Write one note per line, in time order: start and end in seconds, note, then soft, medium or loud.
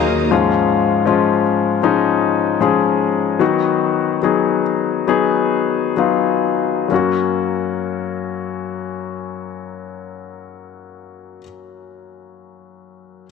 0.00 0.29 D#2 medium
0.00 0.34 F#3 medium
0.00 0.33 A#3 soft
0.00 0.34 A#3 medium
0.00 0.33 D#4 soft
0.00 0.34 D#4 medium
0.00 0.32 F4 soft
0.00 0.32 F4 medium
0.00 0.29 G#4 medium
0.00 0.28 A#4 medium
0.00 0.29 F5 medium
0.00 0.28 A#5 medium
0.00 0.30 D#6 medium
0.31 1.41 G#2 medium
0.31 1.03 F3 medium
0.31 1.03 G#3 medium
0.31 1.03 C#4 medium
0.31 1.03 F4 medium
1.06 1.79 F3 medium
1.06 1.79 G#3 medium
1.06 1.79 C#4 medium
1.06 1.80 F4 medium
1.83 2.57 F3 medium
1.83 2.57 G#3 medium
1.83 2.57 C#4 medium
1.83 2.57 D#4 medium
2.60 3.36 F3 medium
2.60 3.36 G#3 medium
2.60 3.37 C#4 medium
2.60 3.37 G#4 medium
3.39 4.61 D#3 medium
3.39 4.18 F#3 medium
3.39 4.18 B3 medium
3.39 4.19 D#4 medium
3.39 4.19 F#4 medium
4.23 5.04 F#3 medium
4.23 5.04 B3 soft
4.23 5.04 D#4 medium
4.23 5.04 G#4 medium
5.08 5.92 F#3 medium
5.08 5.93 B3 medium
5.08 5.93 D#4 medium
5.08 5.93 G#4 medium
5.97 6.86 F#3 medium
5.97 6.86 B3 soft
5.97 6.86 D#4 soft
5.97 6.87 F4 medium
6.88 11.41 F#2 soft
6.88 11.38 F#3 soft
6.88 11.40 A#3 soft
6.92 11.42 C#4 soft
6.92 11.44 F#4 medium